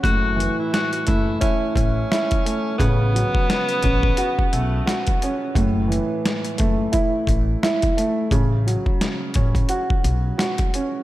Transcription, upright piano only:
X:1
M:4/4
L:1/8
Q:"Swing 16ths" 1/4=87
K:A
V:1 name="Upright piano"
A,, E,2 A, E2 E A, | C, F,2 C F2 F C | A,, E,2 A, E2 E A, | C, F,2 C F2 F C |]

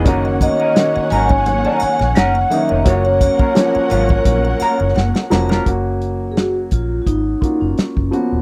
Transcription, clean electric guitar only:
X:1
M:4/4
L:1/16
Q:"Swing 16ths" 1/4=86
K:F#
V:1 name="Clean electric guitar"
[CDA] z2 [CDA] z2 [CDA] z2 [CDA] z2 [CDA] z2 [CDA] | [CEc] z2 [CEA] z2 [CEc] z3 [CEA] z4 [CEA] | z16 |]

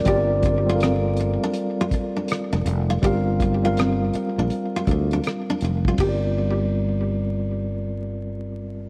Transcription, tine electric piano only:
X:1
M:4/4
L:1/16
Q:"Swing 16ths" 1/4=81
K:Gm
V:1 name="Tine electric piano"
[G,CFBd]2 z [G,CFABf]6 z6 z | [G,CFBf]2 z [G,CFBf]6 z6 z | [G,CFBd]16 |]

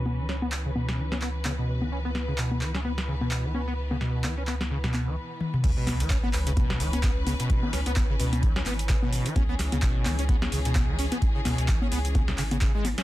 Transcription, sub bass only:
X:1
M:4/4
L:1/16
Q:"Swing 16ths" 1/4=129
K:C#m
V:1 name="Sub bass" clef=bass
C,,16- | C,,16- | C,,12 z4 | C,,2 C,, C,,2 G,,, C,,4 C,,4- C,, z |
z2 C,, C,,2 G,,, C,,4 G,,,4- G,,, z | C,,2 C,, C,,2 G,,, C,,4 C,,4- C,, z | z2 C,, C,,2 G,,, C,,4 G,,,4- G,,, z |]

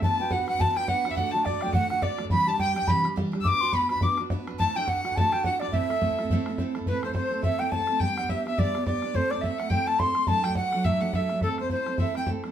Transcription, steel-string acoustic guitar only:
X:1
M:4/4
L:1/8
Q:"Swing" 1/4=211
K:Ador
V:1 name="Steel-string acoustic guitar"
[B,DFB] [DFB] [B,DFB] [DFB] [B,DFB] [DFB] [B,DFB] [DFB] | [D,,A,,D,A,DF] [D,A,DF] [D,A,DF] [D,A,DF] [D,,A,,D,A,DF] [D,A,DF] [D,A,DF] [D,A,DF] | [C,E,G,DG] [G,DG] [E,G,DG] [G,DG] [C,E,G,DG] [G,DG] [E,G,DG] [G,DG] | [B,DFB] [DFB] [B,DFB] [DFB] [B,DFB] [DFB] [B,DFB] [DFB] |
[D,,A,,D,DEF] [D,DEF] [D,DEF] [D,DEF] [D,,A,,D,DEF] [D,DEF] [D,DEF] [D,DEF] | [A,,A,CEA] [CEA] [A,CEA] [CEA] [A,,A,CEA] [CEA] [A,CEA] [CEA] | [A,,A,CEA] [CEA] [A,CEA] [CEA] [A,,A,CEA] [CEA] [A,CEA] [CEA] | [G,B,DG] [B,DG] [G,B,DG] [B,DG] [G,B,DG] [B,DG] [G,B,DG] [B,DG] |
[A,,A,CEA] [CEA] [A,CEA] [CEA] [A,,A,CEA] [CEA] [A,CEA] [CEA] | [D,,A,,F,A,DA] [F,A,DA] [F,A,DA] [F,A,DA] [D,,A,,F,A,DA] [F,A,DA] [F,A,DA] [F,A,DA] | [A,,A,CEA] [CEA] [A,CEA] [CEA] [A,,A,CEA] [CEA] [A,CEA] [CEA] |]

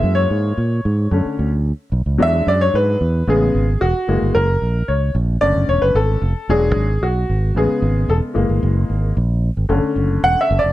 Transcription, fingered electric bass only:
X:1
M:4/4
L:1/16
Q:1/4=112
K:Emix
V:1 name="Fingered electric bass" clef=bass
F,,2 G,,2 ^A,,2 G,,2 F,, z D,,3 z B,,, C,, | E,,2 F,,2 G,,2 E,,2 A,,,2 G,,,2 E,,, z F,,, =G,,, | F,,,2 ^A,,,2 C,,2 A,,,2 F,,, F,,, E,,, F,,, G,,,2 =F,,, z | E,,,2 G,,,2 B,,,2 G,,,2 A,,, z G,,,2 E,,, z F,,, =G,,, |
F,,,2 G,,,2 ^A,,,3 G,,, F,,, z F,,,2 E,,, z F,,, =F,,, |]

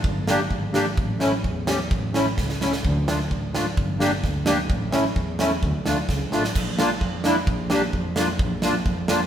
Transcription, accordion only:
X:1
M:2/4
L:1/16
Q:1/4=129
K:Bblyd
V:1 name="Accordion"
z2 [B,DG] z3 [B,DG] z | z2 [A,^CE] z3 [A,CG] z | z2 [A,^CE] z3 [A,CE] z | z2 [A,DF] z3 [A,DF] z |
z2 [B,DG] z3 [B,DG] z | z2 [A,^CE] z3 [A,CE] z | z2 [A,DF] z3 [A,DF] z | z2 [B,DF] z3 [B,DE] z |
z2 [B,DG] z3 [B,DF] z | z2 [B,DF] z3 [B,DF] z |]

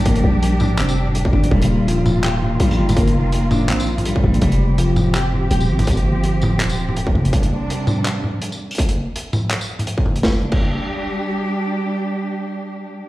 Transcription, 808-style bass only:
X:1
M:4/4
L:1/8
Q:"Swing 16ths" 1/4=165
K:Gm
V:1 name="808-style bass" clef=bass
B,,, B,,,3 F,,,3 G,,, | E,,,6 B,,, G,,,- | G,,, F,,,3 B,,,3 B,,, | F,,,6 E,,, _A,,,- |
_A,,, G,,,3 E,,,3 F,,, | z8 | z8 | z8 |
z8 |]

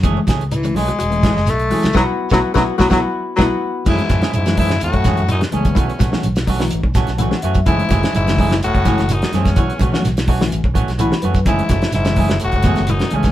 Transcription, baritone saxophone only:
X:1
M:4/4
L:1/16
Q:1/4=126
K:F#dor
V:1 name="Baritone saxophone" clef=bass
z4 E,2 G,6 A,4 | F, z2 F, z F, z F, F, z3 F, z3 | z16 | z16 |
z16 | z16 | z16 |]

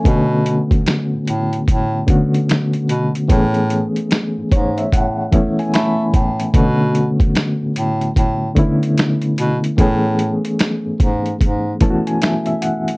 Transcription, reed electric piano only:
X:1
M:4/4
L:1/16
Q:"Swing 16ths" 1/4=74
K:Bdor
V:1 name="Reed electric piano"
z16 | z6 c e f2 e g b4 | z16 | z8 z2 a g e e f2 |]
V:2 name="Reed electric piano"
[D,A,B,CF]8 z2 [D,A,B,CF]6 | [E,A,B,CG]8 z2 [E,A,B,CE]6 | [C,D,A,B,CF]8 z2 [D,A,B,CE]6 | [E,A,B,CG]8 z2 [E,A,B,CEF]6 |]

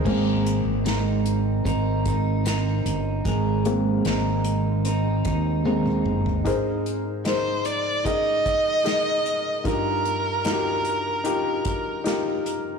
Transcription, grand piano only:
X:1
M:4/4
L:1/8
Q:1/4=75
K:Ablyd
V:1 name="Grand piano"
z8 | z8 | [EABc]2 [EABc]2 [EABe]2 [EABe]2 | [EFGB]2 [EF^FGB]2 [E=FGB]2 [EFGB]2 |]
V:2 name="Grand piano"
[A,B,C]8 | z [A,B,C]4- [A,B,C] [A,B,C] z | A,,3 z4 z | G,,3 z4 z |]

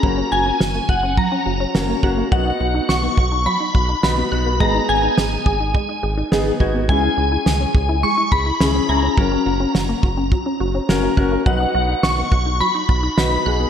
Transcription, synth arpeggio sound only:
X:1
M:4/4
L:1/16
Q:1/4=105
K:F#mix
V:1 name="Synth arpeggio sound"
F, C F C F A, F C F, C F C F A, f' A, | F, D F D F B, F D F, D F D F B, f' B, | G, D G D G B, G D G, D G D G B, g' B, | G, E G E G C G E G, E G E G C g' C |
F, C F C F A, F C F, C F C F A, f' A, | F, D F D F B, F D F, D F D F B, f' B, |]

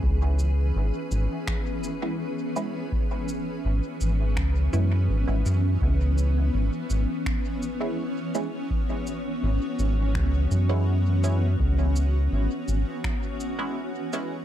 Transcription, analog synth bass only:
X:1
M:4/4
L:1/16
Q:1/4=83
K:C#m
V:1 name="Analog synth bass" clef=bass
C,,4 G,,, z G,,, z8 z | z4 G,,, z G,,,2 C,,2 F,,2 G,,, G,,, F,,2 | C,,4 G,,, z G,,, z8 z | z4 G,,, z G,,,2 C,,2 F,,6 |
C,,4 G,,, z G,,, z8 z |]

